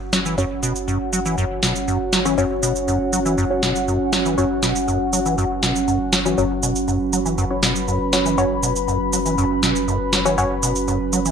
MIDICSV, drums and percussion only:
0, 0, Header, 1, 2, 480
1, 0, Start_track
1, 0, Tempo, 500000
1, 364, Time_signature, 4, 2, 24, 8
1, 10861, End_track
2, 0, Start_track
2, 0, Title_t, "Drums"
2, 123, Note_on_c, 9, 38, 57
2, 126, Note_on_c, 9, 69, 78
2, 219, Note_off_c, 9, 38, 0
2, 222, Note_off_c, 9, 69, 0
2, 248, Note_on_c, 9, 69, 44
2, 344, Note_off_c, 9, 69, 0
2, 366, Note_on_c, 9, 69, 31
2, 462, Note_off_c, 9, 69, 0
2, 605, Note_on_c, 9, 69, 73
2, 701, Note_off_c, 9, 69, 0
2, 728, Note_on_c, 9, 69, 43
2, 824, Note_off_c, 9, 69, 0
2, 845, Note_on_c, 9, 69, 29
2, 941, Note_off_c, 9, 69, 0
2, 1085, Note_on_c, 9, 69, 71
2, 1181, Note_off_c, 9, 69, 0
2, 1207, Note_on_c, 9, 69, 41
2, 1303, Note_off_c, 9, 69, 0
2, 1324, Note_on_c, 9, 69, 31
2, 1420, Note_off_c, 9, 69, 0
2, 1562, Note_on_c, 9, 38, 57
2, 1565, Note_on_c, 9, 69, 73
2, 1658, Note_off_c, 9, 38, 0
2, 1661, Note_off_c, 9, 69, 0
2, 1687, Note_on_c, 9, 69, 42
2, 1783, Note_off_c, 9, 69, 0
2, 1805, Note_on_c, 9, 69, 31
2, 1901, Note_off_c, 9, 69, 0
2, 2043, Note_on_c, 9, 38, 55
2, 2045, Note_on_c, 9, 69, 76
2, 2139, Note_off_c, 9, 38, 0
2, 2141, Note_off_c, 9, 69, 0
2, 2166, Note_on_c, 9, 69, 44
2, 2262, Note_off_c, 9, 69, 0
2, 2285, Note_on_c, 9, 69, 32
2, 2381, Note_off_c, 9, 69, 0
2, 2525, Note_on_c, 9, 69, 72
2, 2621, Note_off_c, 9, 69, 0
2, 2646, Note_on_c, 9, 69, 42
2, 2742, Note_off_c, 9, 69, 0
2, 2765, Note_on_c, 9, 69, 30
2, 2861, Note_off_c, 9, 69, 0
2, 3005, Note_on_c, 9, 69, 74
2, 3101, Note_off_c, 9, 69, 0
2, 3127, Note_on_c, 9, 69, 39
2, 3223, Note_off_c, 9, 69, 0
2, 3245, Note_on_c, 9, 69, 30
2, 3341, Note_off_c, 9, 69, 0
2, 3483, Note_on_c, 9, 38, 57
2, 3485, Note_on_c, 9, 69, 70
2, 3579, Note_off_c, 9, 38, 0
2, 3581, Note_off_c, 9, 69, 0
2, 3607, Note_on_c, 9, 69, 38
2, 3703, Note_off_c, 9, 69, 0
2, 3725, Note_on_c, 9, 69, 32
2, 3821, Note_off_c, 9, 69, 0
2, 3963, Note_on_c, 9, 38, 60
2, 3965, Note_on_c, 9, 69, 77
2, 4059, Note_off_c, 9, 38, 0
2, 4061, Note_off_c, 9, 69, 0
2, 4087, Note_on_c, 9, 69, 41
2, 4183, Note_off_c, 9, 69, 0
2, 4205, Note_on_c, 9, 69, 31
2, 4301, Note_off_c, 9, 69, 0
2, 4442, Note_on_c, 9, 38, 35
2, 4444, Note_on_c, 9, 69, 68
2, 4538, Note_off_c, 9, 38, 0
2, 4540, Note_off_c, 9, 69, 0
2, 4567, Note_on_c, 9, 69, 44
2, 4663, Note_off_c, 9, 69, 0
2, 4686, Note_on_c, 9, 69, 30
2, 4782, Note_off_c, 9, 69, 0
2, 4925, Note_on_c, 9, 69, 74
2, 5021, Note_off_c, 9, 69, 0
2, 5047, Note_on_c, 9, 69, 41
2, 5143, Note_off_c, 9, 69, 0
2, 5166, Note_on_c, 9, 69, 30
2, 5262, Note_off_c, 9, 69, 0
2, 5403, Note_on_c, 9, 38, 61
2, 5405, Note_on_c, 9, 69, 73
2, 5499, Note_off_c, 9, 38, 0
2, 5501, Note_off_c, 9, 69, 0
2, 5526, Note_on_c, 9, 69, 43
2, 5622, Note_off_c, 9, 69, 0
2, 5644, Note_on_c, 9, 69, 31
2, 5740, Note_off_c, 9, 69, 0
2, 5882, Note_on_c, 9, 38, 65
2, 5884, Note_on_c, 9, 69, 74
2, 5978, Note_off_c, 9, 38, 0
2, 5980, Note_off_c, 9, 69, 0
2, 6007, Note_on_c, 9, 69, 44
2, 6103, Note_off_c, 9, 69, 0
2, 6125, Note_on_c, 9, 69, 32
2, 6221, Note_off_c, 9, 69, 0
2, 6364, Note_on_c, 9, 69, 75
2, 6460, Note_off_c, 9, 69, 0
2, 6487, Note_on_c, 9, 69, 46
2, 6583, Note_off_c, 9, 69, 0
2, 6605, Note_on_c, 9, 69, 31
2, 6701, Note_off_c, 9, 69, 0
2, 6845, Note_on_c, 9, 69, 76
2, 6941, Note_off_c, 9, 69, 0
2, 6967, Note_on_c, 9, 69, 41
2, 7063, Note_off_c, 9, 69, 0
2, 7085, Note_on_c, 9, 69, 33
2, 7181, Note_off_c, 9, 69, 0
2, 7322, Note_on_c, 9, 38, 64
2, 7325, Note_on_c, 9, 69, 73
2, 7418, Note_off_c, 9, 38, 0
2, 7421, Note_off_c, 9, 69, 0
2, 7447, Note_on_c, 9, 69, 42
2, 7543, Note_off_c, 9, 69, 0
2, 7565, Note_on_c, 9, 69, 32
2, 7661, Note_off_c, 9, 69, 0
2, 7804, Note_on_c, 9, 38, 64
2, 7806, Note_on_c, 9, 69, 78
2, 7900, Note_off_c, 9, 38, 0
2, 7902, Note_off_c, 9, 69, 0
2, 7927, Note_on_c, 9, 69, 45
2, 8023, Note_off_c, 9, 69, 0
2, 8045, Note_on_c, 9, 69, 35
2, 8141, Note_off_c, 9, 69, 0
2, 8286, Note_on_c, 9, 69, 82
2, 8382, Note_off_c, 9, 69, 0
2, 8408, Note_on_c, 9, 69, 48
2, 8504, Note_off_c, 9, 69, 0
2, 8526, Note_on_c, 9, 69, 31
2, 8622, Note_off_c, 9, 69, 0
2, 8765, Note_on_c, 9, 69, 83
2, 8861, Note_off_c, 9, 69, 0
2, 8887, Note_on_c, 9, 69, 42
2, 8983, Note_off_c, 9, 69, 0
2, 9005, Note_on_c, 9, 69, 35
2, 9101, Note_off_c, 9, 69, 0
2, 9244, Note_on_c, 9, 38, 60
2, 9246, Note_on_c, 9, 69, 82
2, 9340, Note_off_c, 9, 38, 0
2, 9342, Note_off_c, 9, 69, 0
2, 9368, Note_on_c, 9, 69, 43
2, 9464, Note_off_c, 9, 69, 0
2, 9487, Note_on_c, 9, 69, 33
2, 9583, Note_off_c, 9, 69, 0
2, 9723, Note_on_c, 9, 38, 66
2, 9725, Note_on_c, 9, 69, 81
2, 9819, Note_off_c, 9, 38, 0
2, 9821, Note_off_c, 9, 69, 0
2, 9847, Note_on_c, 9, 69, 48
2, 9943, Note_off_c, 9, 69, 0
2, 9965, Note_on_c, 9, 69, 35
2, 10061, Note_off_c, 9, 69, 0
2, 10204, Note_on_c, 9, 69, 80
2, 10300, Note_off_c, 9, 69, 0
2, 10325, Note_on_c, 9, 69, 45
2, 10421, Note_off_c, 9, 69, 0
2, 10443, Note_on_c, 9, 69, 33
2, 10539, Note_off_c, 9, 69, 0
2, 10684, Note_on_c, 9, 69, 82
2, 10780, Note_off_c, 9, 69, 0
2, 10805, Note_on_c, 9, 69, 45
2, 10861, Note_off_c, 9, 69, 0
2, 10861, End_track
0, 0, End_of_file